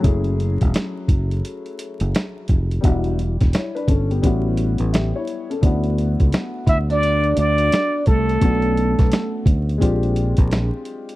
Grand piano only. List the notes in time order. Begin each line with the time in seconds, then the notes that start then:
0.00 F#3 A3 C#4 E4
0.05 G#4
2.81 G3 B3 D4 E4
2.85 F#4
3.54 E4 C#5
3.75 D4 B4
3.89 C#4 A4
4.11 B3 G4
4.22 G3 B3 C#4 E4
4.26 F#4
4.93 G4 E5
5.15 E4 C#5
5.50 C#4 A4
5.61 A3 B3 D4 E4
5.66 F#4
8.40 A3 B3 C#4 D4
8.44 F#4
9.78 G#3 C4 D4 F4
9.83 G4